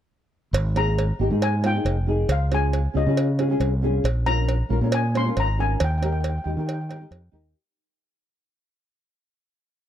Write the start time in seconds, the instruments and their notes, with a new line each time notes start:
0.53 fingered electric bass G#1, cowbell
0.75 nylon-string guitar A#3 D#4 G#4, steel pan A#5, cowbell
0.99 cowbell
1.19 fingered electric bass G#1, nylon-string guitar A#3 D#4 G4
1.29 fingered electric bass G#2, nylon-string guitar A#3 D#4 G#4
1.42 steel pan G#5, cowbell
1.62 nylon-string guitar A#3 D#4 F4, cowbell
1.67 steel pan G5
1.74 nylon-string guitar A#3 D#4 G#4
1.85 fingered electric bass F1, cowbell
2.07 nylon-string guitar A#3 D#4 G#4
2.29 fingered electric bass C#2, steel pan F5, cowbell
2.51 nylon-string guitar C#4 F4 G#4, steel pan G#5, cowbell
2.73 cowbell
2.94 fingered electric bass C#2, nylon-string guitar C#4 F4 G#4, steel pan D#5
3.06 fingered electric bass C#3, nylon-string guitar C#4 F4 G#4
3.17 cowbell
3.38 nylon-string guitar C#4 F4 G#4, cowbell
3.50 nylon-string guitar C#4 F4 G#4
3.60 fingered electric bass C2, cowbell
3.82 nylon-string guitar C#4 F4 G#4
4.04 fingered electric bass A#1, cowbell
4.26 nylon-string guitar C#4 F4 A#4, steel pan A#5, cowbell
4.49 cowbell
4.69 fingered electric bass A#1, nylon-string guitar C#4 F4 A#4
4.81 fingered electric bass A#2, nylon-string guitar C#4 F4 A#4
4.92 steel pan G#5, cowbell
5.14 nylon-string guitar C#4 F4 C5, steel pan C6, cowbell
5.25 nylon-string guitar C#4 F4 A#4
5.37 fingered electric bass G#1, steel pan A#5, cowbell
5.58 nylon-string guitar C#4 F4 A#4, steel pan G#5
5.80 fingered electric bass D#2, cowbell
5.84 steel pan G5
5.90 steel pan G5
5.98 nylon-string guitar D#4, steel pan G5
6.03 nylon-string guitar G4 A#4, steel pan G5, cowbell
6.12 steel pan G5
6.21 steel pan G5, cowbell
6.30 steel pan G5
6.38 steel pan G5
6.44 fingered electric bass D#2, nylon-string guitar D#4 G4 A#4, steel pan G5
6.50 steel pan G5
6.56 fingered electric bass D#3, nylon-string guitar D#4 G4 A#4, steel pan G5
6.67 steel pan G5, cowbell
6.73 steel pan G5
6.81 steel pan G5
6.89 nylon-string guitar D#4 G4 A#4, steel pan G5, cowbell
6.96 nylon-string guitar D#4 G4, steel pan G5
7.01 nylon-string guitar A#4
7.11 fingered electric bass F2, cowbell
7.32 fingered electric bass D#2, nylon-string guitar D#4 G4 A#4